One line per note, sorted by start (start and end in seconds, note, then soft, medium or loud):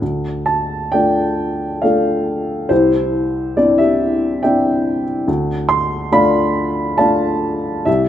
0.02 2.67 D2 soft
0.46 0.94 A5 medium
0.92 1.81 A3 soft
0.92 1.81 D4 soft
0.92 1.82 F4 soft
0.92 1.82 D5 medium
0.92 1.85 G5 medium
1.82 2.68 A3 soft
1.82 2.68 D4 soft
1.82 2.68 F4 soft
1.82 2.67 A4 medium
1.82 2.67 D5 soft
1.82 2.66 F5 medium
2.69 5.23 C2 medium
2.69 3.56 E4 medium
2.69 3.78 G4 medium
2.69 3.53 C5 medium
3.57 4.41 C4 soft
3.57 4.41 D4 soft
3.57 4.41 E4 soft
3.57 3.78 D5 medium
3.78 5.03 G4 soft
3.78 4.42 E5 medium
4.43 5.25 C4 soft
4.43 5.25 D4 soft
4.43 5.25 E4 soft
4.43 5.24 D5 soft
4.43 5.24 E5 soft
4.43 5.02 G5 medium
5.28 7.83 D2 medium
5.69 6.09 C6 medium
6.12 6.96 A3 soft
6.12 6.97 D4 soft
6.12 6.97 F4 medium
6.12 6.97 D5 medium
6.12 6.97 F5 medium
6.12 7.02 B5 medium
6.98 7.84 A3 soft
6.98 7.84 D4 soft
6.98 7.84 F4 soft
6.98 7.83 D5 medium
6.98 7.83 F5 medium
6.98 7.89 A5 medium
7.85 8.09 C2 medium
7.85 8.09 G4 medium
7.85 8.09 E5 medium